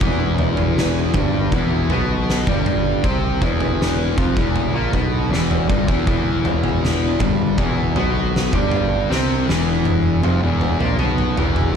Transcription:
0.01 picked electric bass E1, distorted electric guitar E2 E3, kick, floor tom
0.38 mid tom
0.57 floor tom
0.78 snare
1.14 picked electric bass G1, distorted electric guitar G2 G3, kick, floor tom, mid tom
1.52 picked electric bass E1, distorted electric guitar E2 E3, kick, floor tom
1.89 picked electric bass B1, distorted electric guitar B2 B3, floor tom, mid tom
2.30 snare
2.47 picked electric bass G1, distorted electric guitar G2 G3, kick, mid tom
2.66 floor tom
3.04 picked electric bass C2, distorted electric guitar C3 C4, kick, floor tom
3.42 picked electric bass E1, distorted electric guitar E2 E3, kick, mid tom
3.60 floor tom
3.82 snare
4.17 picked electric bass F1, distorted electric guitar F2 F3, kick, floor tom, mid tom
4.37 picked electric bass E1, distorted electric guitar E2 E3, kick
4.56 floor tom
4.73 picked electric bass A#1, distorted electric guitar A#2 A#3
4.93 picked electric bass B1, distorted electric guitar B2 B3, kick, floor tom, mid tom
5.31 picked electric bass E1, distorted electric guitar E2 E3, snare
5.51 mid tom
5.69 picked electric bass G1, distorted electric guitar G2 G3, kick, floor tom
5.88 picked electric bass E1, distorted electric guitar E2 E3, kick
6.07 picked electric bass E1, distorted electric guitar E2 E3, kick, floor tom
6.45 mid tom
6.64 floor tom
6.85 snare
7.20 picked electric bass G1, distorted electric guitar G2 G3, kick, floor tom, mid tom
7.58 picked electric bass E1, distorted electric guitar E2 E3, kick, floor tom
7.96 picked electric bass B1, distorted electric guitar B2 B3, floor tom, mid tom
8.36 snare
8.53 picked electric bass G1, distorted electric guitar G2 G3, kick, mid tom
8.72 floor tom
9.10 picked electric bass C2, distorted electric guitar C3 C4, snare
9.47 picked electric bass E1, distorted electric guitar E2 E3, snare
9.85 high tom
10.23 picked electric bass F1, distorted electric guitar F2 F3, high tom
10.42 picked electric bass E1, distorted electric guitar E2 E3
10.61 mid tom
10.79 picked electric bass A#1, distorted electric guitar A#2 A#3, mid tom
10.98 picked electric bass B1, distorted electric guitar B2 B3, mid tom
11.18 mid tom
11.37 picked electric bass E1, distorted electric guitar E2 E3, mid tom
11.56 floor tom

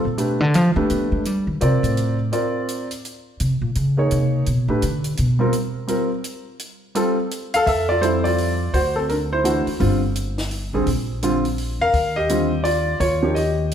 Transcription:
0.05 upright bass A#2
0.18 upright bass B2, grand piano A3 D4 G4 B4, closed hi-hat
0.40 upright bass D3
0.54 upright bass F3, closed hi-hat
0.76 grand piano A3 D4 G4 B4, upright bass A3
0.90 upright bass B3, closed hi-hat
1.12 upright bass G#3
1.25 upright bass G3, closed hi-hat
1.47 upright bass D#3
1.61 upright bass C3, grand piano C4 F4 A#4 D5, closed hi-hat
1.83 upright bass A2, closed hi-hat
1.97 closed hi-hat
2.32 grand piano C4 F4 A#4 D5, closed hi-hat
2.68 closed hi-hat
2.91 closed hi-hat
3.05 closed hi-hat
3.40 upright bass C3, closed hi-hat
3.61 upright bass A#2
3.75 upright bass C#3, closed hi-hat
3.97 grand piano A#3 D#4 G#4 C#5
4.11 upright bass C3, closed hi-hat
4.46 upright bass B2, closed hi-hat
4.68 upright bass A2, grand piano A3 D4 G4 B4
4.82 upright bass D3, closed hi-hat
5.04 closed hi-hat
5.17 upright bass B2, closed hi-hat
5.39 grand piano G3 C4 F4 A#4
5.53 closed hi-hat
5.87 grand piano G3 C4 F4 A#4, closed hi-hat
6.24 closed hi-hat
6.59 closed hi-hat
6.95 grand piano G3 C4 F4 A4, closed hi-hat
7.31 closed hi-hat
7.54 grand piano A4 F5, closed hi-hat
7.66 upright bass F2, grand piano A4 E5, kick, open hi-hat
7.89 grand piano F4 D5
8.01 grand piano G3 C4 E4 F4 A4 C5, closed hi-hat
8.24 grand piano F4 D5, open hi-hat
8.38 open hi-hat
8.74 upright bass D2, grand piano F#4 C5, kick, open hi-hat
8.96 grand piano C4 A4
9.09 grand piano D4 A#4, open hi-hat
9.33 grand piano E4 C5
9.44 grand piano E3 A3 D4 F#4, closed hi-hat
9.67 muted upright bass stroke, open hi-hat
9.79 upright bass G1, grand piano D3 G3 C4 F4, kick, open hi-hat
10.16 closed hi-hat
10.38 snare, open hi-hat
10.51 open hi-hat
10.73 upright bass A1, grand piano D3 G3 C4 G#4
10.86 upright bass A#1, kick, open hi-hat
11.23 grand piano D3 G3 C4 F4, closed hi-hat
11.45 open hi-hat
11.58 open hi-hat
11.80 upright bass E2, grand piano A#4 F5
11.93 upright bass D#2, kick, open hi-hat
12.16 grand piano G4 D#5
12.29 grand piano D3 G3 C4 F4, closed hi-hat
12.64 grand piano F4 D5, open hi-hat
13.00 upright bass D#2, grand piano F4 C#5, kick, open hi-hat
13.23 grand piano F3 A#3 D#4 G4
13.35 grand piano G4 D#5, open hi-hat

